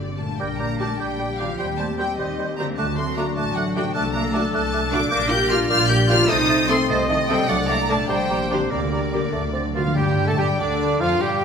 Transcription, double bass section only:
0, 0, Header, 1, 2, 480
1, 0, Start_track
1, 0, Key_signature, -2, "minor"
1, 0, Tempo, 401070
1, 472, Time_signature, 6, 3, 24, 8
1, 3327, Tempo, 388853
1, 6687, Tempo, 398406
1, 9567, Tempo, 414651
1, 13681, End_track
2, 0, Start_track
2, 0, Title_t, "Double bass section"
2, 0, Program_c, 0, 48
2, 0, Note_on_c, 0, 31, 54
2, 205, Note_off_c, 0, 31, 0
2, 470, Note_on_c, 0, 34, 69
2, 1072, Note_off_c, 0, 34, 0
2, 1194, Note_on_c, 0, 34, 61
2, 1783, Note_off_c, 0, 34, 0
2, 1902, Note_on_c, 0, 39, 68
2, 2494, Note_off_c, 0, 39, 0
2, 2616, Note_on_c, 0, 39, 69
2, 3209, Note_off_c, 0, 39, 0
2, 3327, Note_on_c, 0, 38, 74
2, 3926, Note_off_c, 0, 38, 0
2, 4047, Note_on_c, 0, 33, 71
2, 4646, Note_off_c, 0, 33, 0
2, 4765, Note_on_c, 0, 36, 79
2, 5365, Note_off_c, 0, 36, 0
2, 5486, Note_on_c, 0, 36, 79
2, 6085, Note_off_c, 0, 36, 0
2, 6202, Note_on_c, 0, 34, 90
2, 6803, Note_off_c, 0, 34, 0
2, 6921, Note_on_c, 0, 34, 90
2, 7515, Note_off_c, 0, 34, 0
2, 7637, Note_on_c, 0, 36, 97
2, 8239, Note_off_c, 0, 36, 0
2, 8365, Note_on_c, 0, 36, 96
2, 8965, Note_off_c, 0, 36, 0
2, 9084, Note_on_c, 0, 36, 97
2, 9683, Note_off_c, 0, 36, 0
2, 9801, Note_on_c, 0, 34, 87
2, 10394, Note_off_c, 0, 34, 0
2, 10512, Note_on_c, 0, 38, 83
2, 11114, Note_off_c, 0, 38, 0
2, 11233, Note_on_c, 0, 38, 71
2, 11834, Note_off_c, 0, 38, 0
2, 11958, Note_on_c, 0, 43, 79
2, 12298, Note_off_c, 0, 43, 0
2, 12324, Note_on_c, 0, 45, 85
2, 12446, Note_off_c, 0, 45, 0
2, 12446, Note_on_c, 0, 43, 86
2, 12539, Note_off_c, 0, 43, 0
2, 12692, Note_on_c, 0, 38, 81
2, 13160, Note_off_c, 0, 38, 0
2, 13172, Note_on_c, 0, 41, 91
2, 13405, Note_off_c, 0, 41, 0
2, 13413, Note_on_c, 0, 43, 78
2, 13681, Note_off_c, 0, 43, 0
2, 13681, End_track
0, 0, End_of_file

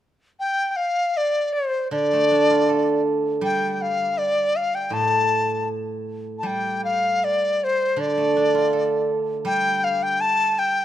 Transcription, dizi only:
0, 0, Header, 1, 2, 480
1, 0, Start_track
1, 0, Tempo, 775194
1, 241, Time_signature, 2, 2, 24, 8
1, 1198, Tempo, 746269
1, 3118, Tempo, 765306
1, 5038, Tempo, 740741
1, 6896, End_track
2, 0, Start_track
2, 0, Title_t, "Dizi"
2, 0, Program_c, 0, 73
2, 245, Note_on_c, 0, 79, 80
2, 440, Note_off_c, 0, 79, 0
2, 440, Note_on_c, 0, 79, 57
2, 472, Note_on_c, 0, 77, 74
2, 482, Note_off_c, 0, 79, 0
2, 724, Note_on_c, 0, 74, 69
2, 733, Note_off_c, 0, 77, 0
2, 949, Note_on_c, 0, 72, 62
2, 958, Note_off_c, 0, 74, 0
2, 1180, Note_off_c, 0, 72, 0
2, 1184, Note_on_c, 0, 74, 82
2, 1891, Note_off_c, 0, 74, 0
2, 2169, Note_on_c, 0, 79, 82
2, 2361, Note_off_c, 0, 79, 0
2, 2361, Note_on_c, 0, 79, 54
2, 2408, Note_on_c, 0, 77, 77
2, 2417, Note_off_c, 0, 79, 0
2, 2641, Note_on_c, 0, 74, 76
2, 2650, Note_off_c, 0, 77, 0
2, 2887, Note_on_c, 0, 77, 81
2, 2896, Note_off_c, 0, 74, 0
2, 3007, Note_on_c, 0, 79, 81
2, 3017, Note_off_c, 0, 77, 0
2, 3125, Note_on_c, 0, 81, 94
2, 3134, Note_off_c, 0, 79, 0
2, 3599, Note_off_c, 0, 81, 0
2, 4037, Note_on_c, 0, 81, 52
2, 4086, Note_on_c, 0, 79, 75
2, 4095, Note_off_c, 0, 81, 0
2, 4322, Note_off_c, 0, 79, 0
2, 4325, Note_on_c, 0, 77, 71
2, 4573, Note_on_c, 0, 74, 74
2, 4583, Note_off_c, 0, 77, 0
2, 4823, Note_on_c, 0, 72, 75
2, 4833, Note_off_c, 0, 74, 0
2, 5048, Note_on_c, 0, 74, 73
2, 5058, Note_off_c, 0, 72, 0
2, 5767, Note_off_c, 0, 74, 0
2, 5996, Note_on_c, 0, 79, 88
2, 6242, Note_on_c, 0, 77, 81
2, 6252, Note_off_c, 0, 79, 0
2, 6364, Note_on_c, 0, 79, 91
2, 6374, Note_off_c, 0, 77, 0
2, 6480, Note_on_c, 0, 81, 100
2, 6490, Note_off_c, 0, 79, 0
2, 6727, Note_on_c, 0, 79, 86
2, 6737, Note_off_c, 0, 81, 0
2, 6896, Note_off_c, 0, 79, 0
2, 6896, End_track
0, 0, End_of_file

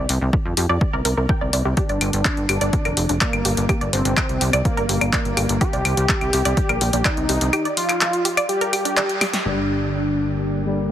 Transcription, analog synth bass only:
0, 0, Header, 1, 2, 480
1, 0, Start_track
1, 0, Key_signature, -2, "minor"
1, 0, Tempo, 480000
1, 1771, Time_signature, 4, 2, 24, 8
1, 10915, End_track
2, 0, Start_track
2, 0, Title_t, "Analog synth bass"
2, 0, Program_c, 0, 38
2, 93, Note_on_c, 0, 36, 99
2, 184, Note_off_c, 0, 36, 0
2, 215, Note_on_c, 0, 36, 87
2, 303, Note_off_c, 0, 36, 0
2, 455, Note_on_c, 0, 41, 84
2, 543, Note_off_c, 0, 41, 0
2, 574, Note_on_c, 0, 41, 99
2, 665, Note_off_c, 0, 41, 0
2, 695, Note_on_c, 0, 41, 90
2, 783, Note_off_c, 0, 41, 0
2, 935, Note_on_c, 0, 36, 87
2, 1023, Note_off_c, 0, 36, 0
2, 1052, Note_on_c, 0, 36, 98
2, 1144, Note_off_c, 0, 36, 0
2, 1174, Note_on_c, 0, 36, 90
2, 1263, Note_off_c, 0, 36, 0
2, 1414, Note_on_c, 0, 36, 83
2, 1503, Note_off_c, 0, 36, 0
2, 1533, Note_on_c, 0, 36, 97
2, 1624, Note_off_c, 0, 36, 0
2, 1654, Note_on_c, 0, 36, 90
2, 1743, Note_off_c, 0, 36, 0
2, 1895, Note_on_c, 0, 31, 84
2, 1983, Note_off_c, 0, 31, 0
2, 2013, Note_on_c, 0, 31, 102
2, 2104, Note_off_c, 0, 31, 0
2, 2134, Note_on_c, 0, 31, 93
2, 2222, Note_off_c, 0, 31, 0
2, 2374, Note_on_c, 0, 31, 87
2, 2462, Note_off_c, 0, 31, 0
2, 2493, Note_on_c, 0, 31, 100
2, 2584, Note_off_c, 0, 31, 0
2, 2614, Note_on_c, 0, 31, 91
2, 2702, Note_off_c, 0, 31, 0
2, 2855, Note_on_c, 0, 29, 88
2, 2943, Note_off_c, 0, 29, 0
2, 2973, Note_on_c, 0, 29, 100
2, 3064, Note_off_c, 0, 29, 0
2, 3094, Note_on_c, 0, 29, 91
2, 3182, Note_off_c, 0, 29, 0
2, 3334, Note_on_c, 0, 31, 89
2, 3423, Note_off_c, 0, 31, 0
2, 3451, Note_on_c, 0, 31, 94
2, 3543, Note_off_c, 0, 31, 0
2, 3573, Note_on_c, 0, 31, 91
2, 3662, Note_off_c, 0, 31, 0
2, 3813, Note_on_c, 0, 31, 86
2, 3902, Note_off_c, 0, 31, 0
2, 3932, Note_on_c, 0, 31, 101
2, 4023, Note_off_c, 0, 31, 0
2, 4053, Note_on_c, 0, 31, 91
2, 4142, Note_off_c, 0, 31, 0
2, 4293, Note_on_c, 0, 36, 88
2, 4382, Note_off_c, 0, 36, 0
2, 4411, Note_on_c, 0, 36, 103
2, 4503, Note_off_c, 0, 36, 0
2, 4533, Note_on_c, 0, 36, 94
2, 4622, Note_off_c, 0, 36, 0
2, 4773, Note_on_c, 0, 31, 88
2, 4862, Note_off_c, 0, 31, 0
2, 4891, Note_on_c, 0, 31, 100
2, 4983, Note_off_c, 0, 31, 0
2, 5253, Note_on_c, 0, 31, 88
2, 5342, Note_off_c, 0, 31, 0
2, 5371, Note_on_c, 0, 31, 93
2, 5463, Note_off_c, 0, 31, 0
2, 5492, Note_on_c, 0, 31, 93
2, 5582, Note_off_c, 0, 31, 0
2, 5733, Note_on_c, 0, 36, 83
2, 5822, Note_off_c, 0, 36, 0
2, 5852, Note_on_c, 0, 36, 99
2, 5943, Note_off_c, 0, 36, 0
2, 5974, Note_on_c, 0, 36, 91
2, 6062, Note_off_c, 0, 36, 0
2, 6215, Note_on_c, 0, 36, 84
2, 6303, Note_off_c, 0, 36, 0
2, 6333, Note_on_c, 0, 36, 102
2, 6424, Note_off_c, 0, 36, 0
2, 6454, Note_on_c, 0, 36, 92
2, 6542, Note_off_c, 0, 36, 0
2, 6694, Note_on_c, 0, 34, 88
2, 6782, Note_off_c, 0, 34, 0
2, 6813, Note_on_c, 0, 34, 101
2, 6904, Note_off_c, 0, 34, 0
2, 6934, Note_on_c, 0, 34, 93
2, 7022, Note_off_c, 0, 34, 0
2, 7175, Note_on_c, 0, 36, 87
2, 7263, Note_off_c, 0, 36, 0
2, 7292, Note_on_c, 0, 36, 99
2, 7384, Note_off_c, 0, 36, 0
2, 7414, Note_on_c, 0, 36, 91
2, 7502, Note_off_c, 0, 36, 0
2, 9454, Note_on_c, 0, 31, 84
2, 10915, Note_off_c, 0, 31, 0
2, 10915, End_track
0, 0, End_of_file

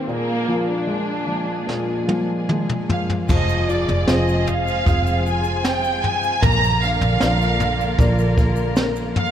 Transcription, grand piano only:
0, 0, Header, 1, 2, 480
1, 0, Start_track
1, 0, Tempo, 801068
1, 54, Time_signature, 4, 2, 24, 8
1, 1974, Tempo, 782269
1, 5666, End_track
2, 0, Start_track
2, 0, Title_t, "Grand piano"
2, 0, Program_c, 0, 0
2, 0, Control_c, 0, 64, 127
2, 0, Note_on_c, 0, 51, 41
2, 0, Note_on_c, 0, 58, 45
2, 44, Note_on_c, 0, 46, 51
2, 62, Control_c, 0, 64, 0
2, 67, Note_off_c, 0, 51, 0
2, 67, Note_off_c, 0, 58, 0
2, 154, Control_c, 0, 64, 127
2, 284, Note_on_c, 0, 53, 43
2, 523, Note_on_c, 0, 56, 43
2, 750, Note_off_c, 0, 53, 0
2, 759, Note_on_c, 0, 53, 44
2, 991, Note_off_c, 0, 46, 0
2, 1000, Note_on_c, 0, 46, 50
2, 1235, Note_off_c, 0, 53, 0
2, 1244, Note_on_c, 0, 53, 42
2, 1466, Note_off_c, 0, 56, 0
2, 1492, Note_on_c, 0, 56, 42
2, 1724, Note_off_c, 0, 53, 0
2, 1733, Note_on_c, 0, 53, 46
2, 1946, Note_off_c, 0, 46, 0
2, 1959, Note_off_c, 0, 56, 0
2, 1960, Note_off_c, 0, 53, 0
2, 1968, Note_on_c, 0, 53, 60
2, 1982, Control_c, 0, 64, 0
2, 2098, Control_c, 0, 64, 127
2, 2449, Note_on_c, 0, 60, 48
2, 2453, Note_on_c, 0, 65, 44
2, 2454, Note_on_c, 0, 68, 48
2, 2922, Note_off_c, 0, 60, 0
2, 2924, Note_off_c, 0, 65, 0
2, 2924, Note_off_c, 0, 68, 0
2, 2934, Note_on_c, 0, 65, 47
2, 2936, Note_on_c, 0, 60, 47
2, 2940, Note_on_c, 0, 68, 53
2, 3403, Note_off_c, 0, 60, 0
2, 3403, Note_off_c, 0, 65, 0
2, 3406, Note_off_c, 0, 68, 0
2, 3872, Note_off_c, 0, 53, 0
2, 3893, Note_on_c, 0, 58, 54
2, 3906, Control_c, 0, 64, 0
2, 4004, Control_c, 0, 64, 127
2, 4377, Note_on_c, 0, 65, 50
2, 4379, Note_on_c, 0, 70, 45
2, 4382, Note_on_c, 0, 74, 49
2, 4841, Note_off_c, 0, 65, 0
2, 4842, Note_off_c, 0, 70, 0
2, 4844, Note_off_c, 0, 74, 0
2, 4857, Note_on_c, 0, 65, 54
2, 4861, Note_on_c, 0, 70, 49
2, 4865, Note_on_c, 0, 74, 58
2, 5320, Note_off_c, 0, 65, 0
2, 5322, Note_off_c, 0, 70, 0
2, 5324, Note_off_c, 0, 74, 0
2, 5666, Note_off_c, 0, 58, 0
2, 5666, End_track
0, 0, End_of_file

